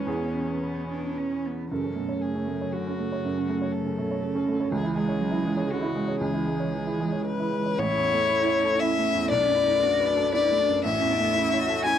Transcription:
Already playing: B2 E3 C#4 B4
0.05 E2 B3 G#4
0.62 B3
0.92 D4
1.18 C#4
1.46 B3
1.71 F#2 C#3 F#3 A3 C#4 A4
1.84 C#4
1.95 B2 A3
2.09 C#5
2.22 C#3 G#4
2.35 C#4
2.47 A3
2.61 C#5
2.73 D3 F#4
2.87 C#4
2.99 C#3 A3
3.12 C#5
3.25 F#2
3.37 C#4
3.49 A3
3.62 C#5
3.72 C#3 A4
3.87 C#4
3.98 B2 A3
4.11 C#5
4.23 C#3
4.35 C#4
4.47 D3 A3
4.60 C#5
4.71 C#2 E3 G#4
4.83 E4
4.95 G#3 G#4
5.08 C#5
5.19 F#3
5.31 E4
5.44 E3 G#3
5.57 C#5
5.67 D3 F#4
5.82 E4
5.91 C#3 G#3
6.08 C#5
6.18 C#2 E3 G#4
6.33 E4
6.46 G#3
6.60 C#5
6.86 E4
7.00 G#3
7.12 C#5
7.26 B4
7.39 E4
7.52 G#3
7.66 C#5
7.78 A1 A3 E4 A4 C#5
7.97 E2
8.14 A3
8.30 E4
8.47 C#5
8.64 A4
8.79 C#4 E4 E5
8.99 A3
9.15 E2
9.30 B1 D4 F#4 B4 D5
9.49 F#2
9.55 E4
9.66 A3
9.83 D4 F#4
10.00 B4
10.07 D4
10.17 A4
10.32 D4 E4 D5
10.52 A3
10.58 D4
10.69 F#2
10.84 A1 C#4 E4 C#5 E5
11.02 E2
11.11 D4
11.20 A3
11.34 C#4 E4
11.54 C#5
11.61 F#4
11.69 A4
11.85 C#4 E4 G#5

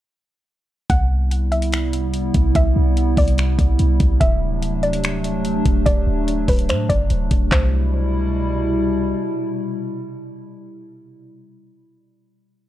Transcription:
0.90 C2 C3 G3 B3 E4 F#5, kick, closed hi-hat
1.31 closed hi-hat
1.52 E5, closed hi-hat
1.62 closed hi-hat
1.72 finger snap, closed hi-hat
1.93 closed hi-hat
2.14 closed hi-hat
2.34 C2, kick, closed hi-hat
2.55 C2 E5, kick, closed hi-hat
2.76 C2
2.97 closed hi-hat
3.17 C2 D5, kick, closed hi-hat, open hi-hat
3.28 closed hi-hat
3.38 finger snap, closed hi-hat
3.59 C2, kick, closed hi-hat
3.79 C2, closed hi-hat
4.00 C2, kick, closed hi-hat
4.20 D1 F#3 A3 D4 E5, kick, closed hi-hat
4.62 closed hi-hat
4.83 D5, closed hi-hat
4.93 closed hi-hat
5.04 finger snap, closed hi-hat
5.24 closed hi-hat
5.45 closed hi-hat
5.66 D1, kick, closed hi-hat
5.86 D1 D5, kick, closed hi-hat
6.07 D1
6.28 closed hi-hat
6.48 C1 B4, kick, closed hi-hat, open hi-hat
6.59 closed hi-hat
6.69 A2 C5, finger snap, closed hi-hat
6.89 F#1 D5, kick, closed hi-hat
7.10 D1, closed hi-hat
7.31 D1, kick, closed hi-hat
7.52 C2 B2 C3 G3 E4 C5, kick, clap

